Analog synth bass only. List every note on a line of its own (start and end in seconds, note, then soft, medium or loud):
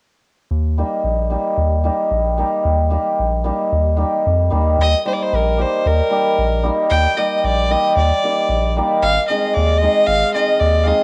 0.51 0.83 D#2 medium
1.04 1.36 A#1 medium
1.57 1.90 D#2 medium
2.11 2.44 A#1 medium
2.65 2.97 D#2 medium
3.19 3.51 A#1 medium
3.73 4.05 D#2 medium
4.27 4.50 F2 medium
4.53 4.76 D#2 medium
4.79 4.95 D#2 loud
5.33 5.65 A#1 medium
5.86 6.02 D#2 medium
6.38 6.70 A#1 medium
6.91 7.07 D#2 medium
7.44 7.76 A#1 medium
7.96 8.12 D#2 medium
8.49 8.81 A#1 medium
9.03 9.18 G#1 loud
9.57 9.88 D#2 medium
10.08 10.24 G#1 medium
10.61 10.92 D#2 medium